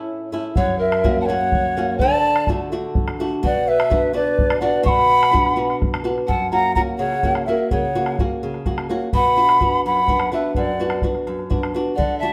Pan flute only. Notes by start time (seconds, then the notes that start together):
0.57 C#5
0.78 A#4
1.20 F#5
1.26 C#5
1.98 D5
3.45 D5
3.68 B4
4.15 B4
4.61 D5
4.85 F#5
6.27 F#5
6.51 F#5
6.75 F#5
6.98 C#5
7.47 A#4
7.72 C#5
9.15 F#5
9.87 F#5
10.33 B4
10.57 D5
11.96 D5
12.19 E5